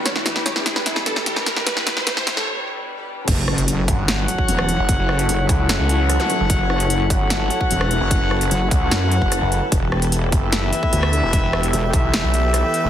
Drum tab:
CC |----------------|----------------|x---------------|----------------|
HH |x-x-x-x-x-x-x-x-|x-x-x-x---------|x--xx-x-x-x-x-x-|x--xx-x-x-x-x-x-|
SD |oooooooooooooooo|oooooooo--------|--r-----o----r--|--r-----o---r---|
BD |----------------|----------------|o-----o----o----|o-----o---------|

CC |----------------|----------------|----------------|----------------|
HH |x--xx-x-x-x-x-x-|x--xx-x-x-x-x-x-|x--xx-x-x-x-x-x-|x--xx-x-x-x-x-x-|
SD |--r-----o----r--|--r-----o---r---|--r-----o----r--|--r-----o---r---|
BD |o-----o----o----|o-----o----o----|o-----o----o----|o-----o---------|